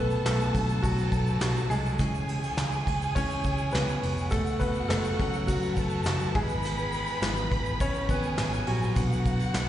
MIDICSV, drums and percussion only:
0, 0, Header, 1, 2, 480
1, 0, Start_track
1, 0, Key_signature, 3, "minor"
1, 0, Tempo, 580833
1, 1651, Time_signature, 4, 2, 24, 8
1, 8006, End_track
2, 0, Start_track
2, 0, Title_t, "Drums"
2, 84, Note_on_c, 9, 82, 50
2, 91, Note_on_c, 9, 51, 52
2, 167, Note_off_c, 9, 82, 0
2, 174, Note_off_c, 9, 51, 0
2, 211, Note_on_c, 9, 51, 79
2, 212, Note_on_c, 9, 38, 114
2, 214, Note_on_c, 9, 82, 67
2, 222, Note_on_c, 9, 39, 90
2, 294, Note_off_c, 9, 51, 0
2, 295, Note_off_c, 9, 38, 0
2, 297, Note_off_c, 9, 82, 0
2, 305, Note_off_c, 9, 39, 0
2, 335, Note_on_c, 9, 82, 51
2, 417, Note_off_c, 9, 82, 0
2, 452, Note_on_c, 9, 36, 94
2, 454, Note_on_c, 9, 82, 43
2, 456, Note_on_c, 9, 51, 67
2, 535, Note_off_c, 9, 36, 0
2, 537, Note_off_c, 9, 82, 0
2, 538, Note_off_c, 9, 51, 0
2, 572, Note_on_c, 9, 82, 51
2, 655, Note_off_c, 9, 82, 0
2, 691, Note_on_c, 9, 36, 91
2, 694, Note_on_c, 9, 51, 87
2, 695, Note_on_c, 9, 82, 80
2, 773, Note_off_c, 9, 36, 0
2, 777, Note_off_c, 9, 51, 0
2, 777, Note_off_c, 9, 82, 0
2, 813, Note_on_c, 9, 82, 56
2, 895, Note_off_c, 9, 82, 0
2, 925, Note_on_c, 9, 51, 61
2, 926, Note_on_c, 9, 36, 87
2, 932, Note_on_c, 9, 82, 56
2, 1008, Note_off_c, 9, 36, 0
2, 1008, Note_off_c, 9, 51, 0
2, 1014, Note_off_c, 9, 82, 0
2, 1046, Note_on_c, 9, 82, 53
2, 1129, Note_off_c, 9, 82, 0
2, 1165, Note_on_c, 9, 82, 68
2, 1166, Note_on_c, 9, 38, 113
2, 1166, Note_on_c, 9, 51, 66
2, 1176, Note_on_c, 9, 39, 91
2, 1248, Note_off_c, 9, 82, 0
2, 1249, Note_off_c, 9, 38, 0
2, 1249, Note_off_c, 9, 51, 0
2, 1259, Note_off_c, 9, 39, 0
2, 1296, Note_on_c, 9, 82, 50
2, 1378, Note_off_c, 9, 82, 0
2, 1408, Note_on_c, 9, 46, 76
2, 1408, Note_on_c, 9, 51, 62
2, 1415, Note_on_c, 9, 82, 53
2, 1491, Note_off_c, 9, 46, 0
2, 1491, Note_off_c, 9, 51, 0
2, 1497, Note_off_c, 9, 82, 0
2, 1535, Note_on_c, 9, 82, 51
2, 1618, Note_off_c, 9, 82, 0
2, 1642, Note_on_c, 9, 82, 69
2, 1645, Note_on_c, 9, 44, 68
2, 1646, Note_on_c, 9, 51, 63
2, 1648, Note_on_c, 9, 36, 106
2, 1725, Note_off_c, 9, 82, 0
2, 1728, Note_off_c, 9, 44, 0
2, 1728, Note_off_c, 9, 51, 0
2, 1730, Note_off_c, 9, 36, 0
2, 1772, Note_on_c, 9, 82, 57
2, 1854, Note_off_c, 9, 82, 0
2, 1888, Note_on_c, 9, 82, 56
2, 1890, Note_on_c, 9, 51, 53
2, 1971, Note_off_c, 9, 82, 0
2, 1973, Note_off_c, 9, 51, 0
2, 2010, Note_on_c, 9, 82, 51
2, 2012, Note_on_c, 9, 51, 54
2, 2092, Note_off_c, 9, 82, 0
2, 2094, Note_off_c, 9, 51, 0
2, 2126, Note_on_c, 9, 51, 71
2, 2128, Note_on_c, 9, 38, 104
2, 2130, Note_on_c, 9, 82, 73
2, 2137, Note_on_c, 9, 39, 85
2, 2209, Note_off_c, 9, 51, 0
2, 2210, Note_off_c, 9, 38, 0
2, 2213, Note_off_c, 9, 82, 0
2, 2220, Note_off_c, 9, 39, 0
2, 2248, Note_on_c, 9, 82, 48
2, 2331, Note_off_c, 9, 82, 0
2, 2372, Note_on_c, 9, 36, 88
2, 2375, Note_on_c, 9, 51, 71
2, 2455, Note_off_c, 9, 36, 0
2, 2458, Note_off_c, 9, 51, 0
2, 2493, Note_on_c, 9, 82, 51
2, 2575, Note_off_c, 9, 82, 0
2, 2611, Note_on_c, 9, 36, 90
2, 2612, Note_on_c, 9, 51, 83
2, 2613, Note_on_c, 9, 82, 81
2, 2694, Note_off_c, 9, 36, 0
2, 2695, Note_off_c, 9, 51, 0
2, 2696, Note_off_c, 9, 82, 0
2, 2729, Note_on_c, 9, 82, 54
2, 2811, Note_off_c, 9, 82, 0
2, 2842, Note_on_c, 9, 82, 53
2, 2848, Note_on_c, 9, 36, 82
2, 2853, Note_on_c, 9, 51, 59
2, 2924, Note_off_c, 9, 82, 0
2, 2931, Note_off_c, 9, 36, 0
2, 2936, Note_off_c, 9, 51, 0
2, 2957, Note_on_c, 9, 82, 53
2, 3040, Note_off_c, 9, 82, 0
2, 3068, Note_on_c, 9, 82, 65
2, 3095, Note_on_c, 9, 38, 116
2, 3095, Note_on_c, 9, 51, 69
2, 3105, Note_on_c, 9, 39, 86
2, 3151, Note_off_c, 9, 82, 0
2, 3178, Note_off_c, 9, 38, 0
2, 3178, Note_off_c, 9, 51, 0
2, 3188, Note_off_c, 9, 39, 0
2, 3212, Note_on_c, 9, 82, 47
2, 3294, Note_off_c, 9, 82, 0
2, 3331, Note_on_c, 9, 46, 76
2, 3331, Note_on_c, 9, 51, 60
2, 3414, Note_off_c, 9, 46, 0
2, 3414, Note_off_c, 9, 51, 0
2, 3454, Note_on_c, 9, 82, 51
2, 3537, Note_off_c, 9, 82, 0
2, 3557, Note_on_c, 9, 82, 73
2, 3571, Note_on_c, 9, 36, 107
2, 3574, Note_on_c, 9, 44, 64
2, 3575, Note_on_c, 9, 51, 64
2, 3640, Note_off_c, 9, 82, 0
2, 3654, Note_off_c, 9, 36, 0
2, 3657, Note_off_c, 9, 44, 0
2, 3657, Note_off_c, 9, 51, 0
2, 3690, Note_on_c, 9, 82, 52
2, 3773, Note_off_c, 9, 82, 0
2, 3801, Note_on_c, 9, 82, 58
2, 3811, Note_on_c, 9, 36, 91
2, 3811, Note_on_c, 9, 51, 56
2, 3883, Note_off_c, 9, 82, 0
2, 3893, Note_off_c, 9, 51, 0
2, 3894, Note_off_c, 9, 36, 0
2, 3919, Note_on_c, 9, 82, 50
2, 4001, Note_off_c, 9, 82, 0
2, 4048, Note_on_c, 9, 51, 84
2, 4049, Note_on_c, 9, 38, 110
2, 4053, Note_on_c, 9, 82, 74
2, 4059, Note_on_c, 9, 39, 95
2, 4130, Note_off_c, 9, 51, 0
2, 4131, Note_off_c, 9, 38, 0
2, 4136, Note_off_c, 9, 82, 0
2, 4141, Note_off_c, 9, 39, 0
2, 4168, Note_on_c, 9, 82, 54
2, 4251, Note_off_c, 9, 82, 0
2, 4293, Note_on_c, 9, 36, 91
2, 4295, Note_on_c, 9, 51, 68
2, 4376, Note_off_c, 9, 36, 0
2, 4378, Note_off_c, 9, 51, 0
2, 4411, Note_on_c, 9, 82, 51
2, 4494, Note_off_c, 9, 82, 0
2, 4529, Note_on_c, 9, 82, 78
2, 4533, Note_on_c, 9, 36, 91
2, 4537, Note_on_c, 9, 51, 87
2, 4612, Note_off_c, 9, 82, 0
2, 4615, Note_off_c, 9, 36, 0
2, 4619, Note_off_c, 9, 51, 0
2, 4646, Note_on_c, 9, 82, 52
2, 4729, Note_off_c, 9, 82, 0
2, 4763, Note_on_c, 9, 82, 54
2, 4767, Note_on_c, 9, 36, 82
2, 4769, Note_on_c, 9, 51, 59
2, 4845, Note_off_c, 9, 82, 0
2, 4850, Note_off_c, 9, 36, 0
2, 4852, Note_off_c, 9, 51, 0
2, 4875, Note_on_c, 9, 82, 52
2, 4958, Note_off_c, 9, 82, 0
2, 4989, Note_on_c, 9, 82, 70
2, 5007, Note_on_c, 9, 38, 115
2, 5007, Note_on_c, 9, 51, 69
2, 5017, Note_on_c, 9, 39, 90
2, 5071, Note_off_c, 9, 82, 0
2, 5090, Note_off_c, 9, 38, 0
2, 5090, Note_off_c, 9, 51, 0
2, 5100, Note_off_c, 9, 39, 0
2, 5123, Note_on_c, 9, 82, 48
2, 5205, Note_off_c, 9, 82, 0
2, 5248, Note_on_c, 9, 46, 80
2, 5248, Note_on_c, 9, 51, 62
2, 5249, Note_on_c, 9, 36, 115
2, 5331, Note_off_c, 9, 46, 0
2, 5331, Note_off_c, 9, 51, 0
2, 5332, Note_off_c, 9, 36, 0
2, 5363, Note_on_c, 9, 82, 49
2, 5445, Note_off_c, 9, 82, 0
2, 5477, Note_on_c, 9, 82, 68
2, 5494, Note_on_c, 9, 44, 69
2, 5494, Note_on_c, 9, 51, 73
2, 5560, Note_off_c, 9, 82, 0
2, 5576, Note_off_c, 9, 44, 0
2, 5577, Note_off_c, 9, 51, 0
2, 5604, Note_on_c, 9, 82, 55
2, 5686, Note_off_c, 9, 82, 0
2, 5720, Note_on_c, 9, 82, 62
2, 5735, Note_on_c, 9, 51, 53
2, 5802, Note_off_c, 9, 82, 0
2, 5817, Note_off_c, 9, 51, 0
2, 5834, Note_on_c, 9, 82, 51
2, 5847, Note_on_c, 9, 51, 49
2, 5917, Note_off_c, 9, 82, 0
2, 5930, Note_off_c, 9, 51, 0
2, 5965, Note_on_c, 9, 82, 76
2, 5969, Note_on_c, 9, 51, 76
2, 5970, Note_on_c, 9, 38, 112
2, 5980, Note_on_c, 9, 39, 91
2, 6048, Note_off_c, 9, 82, 0
2, 6051, Note_off_c, 9, 51, 0
2, 6053, Note_off_c, 9, 38, 0
2, 6062, Note_off_c, 9, 39, 0
2, 6084, Note_on_c, 9, 82, 53
2, 6166, Note_off_c, 9, 82, 0
2, 6211, Note_on_c, 9, 36, 91
2, 6214, Note_on_c, 9, 51, 70
2, 6294, Note_off_c, 9, 36, 0
2, 6296, Note_off_c, 9, 51, 0
2, 6328, Note_on_c, 9, 82, 51
2, 6411, Note_off_c, 9, 82, 0
2, 6448, Note_on_c, 9, 51, 88
2, 6449, Note_on_c, 9, 36, 85
2, 6450, Note_on_c, 9, 82, 83
2, 6531, Note_off_c, 9, 51, 0
2, 6532, Note_off_c, 9, 36, 0
2, 6533, Note_off_c, 9, 82, 0
2, 6565, Note_on_c, 9, 82, 54
2, 6648, Note_off_c, 9, 82, 0
2, 6685, Note_on_c, 9, 36, 89
2, 6685, Note_on_c, 9, 51, 61
2, 6688, Note_on_c, 9, 82, 56
2, 6768, Note_off_c, 9, 36, 0
2, 6768, Note_off_c, 9, 51, 0
2, 6771, Note_off_c, 9, 82, 0
2, 6802, Note_on_c, 9, 82, 54
2, 6884, Note_off_c, 9, 82, 0
2, 6922, Note_on_c, 9, 38, 109
2, 6922, Note_on_c, 9, 51, 73
2, 6924, Note_on_c, 9, 82, 71
2, 6932, Note_on_c, 9, 39, 93
2, 7005, Note_off_c, 9, 38, 0
2, 7005, Note_off_c, 9, 51, 0
2, 7007, Note_off_c, 9, 82, 0
2, 7015, Note_off_c, 9, 39, 0
2, 7056, Note_on_c, 9, 82, 48
2, 7139, Note_off_c, 9, 82, 0
2, 7163, Note_on_c, 9, 46, 78
2, 7163, Note_on_c, 9, 51, 61
2, 7246, Note_off_c, 9, 46, 0
2, 7246, Note_off_c, 9, 51, 0
2, 7294, Note_on_c, 9, 82, 48
2, 7377, Note_off_c, 9, 82, 0
2, 7403, Note_on_c, 9, 44, 67
2, 7403, Note_on_c, 9, 82, 71
2, 7404, Note_on_c, 9, 51, 71
2, 7408, Note_on_c, 9, 36, 105
2, 7485, Note_off_c, 9, 82, 0
2, 7486, Note_off_c, 9, 44, 0
2, 7487, Note_off_c, 9, 51, 0
2, 7490, Note_off_c, 9, 36, 0
2, 7539, Note_on_c, 9, 82, 51
2, 7622, Note_off_c, 9, 82, 0
2, 7645, Note_on_c, 9, 51, 55
2, 7649, Note_on_c, 9, 36, 89
2, 7651, Note_on_c, 9, 82, 61
2, 7728, Note_off_c, 9, 51, 0
2, 7732, Note_off_c, 9, 36, 0
2, 7734, Note_off_c, 9, 82, 0
2, 7765, Note_on_c, 9, 51, 53
2, 7774, Note_on_c, 9, 82, 47
2, 7847, Note_off_c, 9, 51, 0
2, 7856, Note_off_c, 9, 82, 0
2, 7884, Note_on_c, 9, 51, 77
2, 7885, Note_on_c, 9, 38, 110
2, 7893, Note_on_c, 9, 82, 72
2, 7895, Note_on_c, 9, 39, 90
2, 7967, Note_off_c, 9, 51, 0
2, 7968, Note_off_c, 9, 38, 0
2, 7976, Note_off_c, 9, 82, 0
2, 7978, Note_off_c, 9, 39, 0
2, 8006, End_track
0, 0, End_of_file